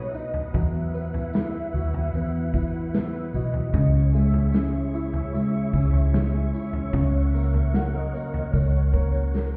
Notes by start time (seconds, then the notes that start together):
Already playing: B2 F#3 B3 D#4 B4 D#5 F#5 D#6
0.07 E5
0.14 D#4 D#5, tambourine
0.34 B3, floor tom
0.54 E2 F#3 E4 E5 F#5, kick, floor tom, tambourine
0.74 B3
0.94 B3 B4, tambourine
1.14 E4, floor tom, tambourine
1.33 F#3 E4, snare, tambourine
1.54 B4
1.74 D#2 E4 F#4, tambourine
1.94 B3, floor tom
2.14 E2 E3 B3, tambourine
2.34 B3
2.54 E4 B4, kick, tambourine
2.74 E4
2.93 F#3 B3 E5, snare, tambourine
3.13 B4
3.33 B1 E4 F#4 D#5, tambourine
3.53 B3, floor tom
3.73 C#2 C#3 E4 G#4 C#5 C#6, kick, floor tom, tambourine
3.93 C#4
4.13 G#3 G#4 E5, tambourine
4.33 E4, floor tom
4.53 G#3 C#4, snare, tambourine
4.73 G#4
4.93 E4 E5, tambourine
5.13 C#4, floor tom
5.34 C#3 G#3, tambourine
5.53 C#4
5.73 C#2 C#4 G#4, kick, tambourine
5.94 E4, floor tom, tambourine
6.14 G#3, snare, tambourine
6.34 G#4
6.54 E4, tambourine
6.73 C#4, floor tom
6.93 C#2 C#3 A#4 C#5 F#5, kick, floor tom, tambourine
7.14 C#4 E5
7.34 A#3 A#4, tambourine
7.54 F#4, floor tom, tambourine
7.74 F#3 A#4 F#5, snare, tambourine
7.95 A#4 D#5
8.13 B1 A#3 F#4, tambourine
8.34 C#4, floor tom
8.54 C#2 C#3 A#4 C#5, kick, tambourine
8.74 C#4
8.93 A#3 A#4, kick, tambourine
9.13 F#4, tambourine
9.33 F#3 A#4, snare, tambourine
9.53 tambourine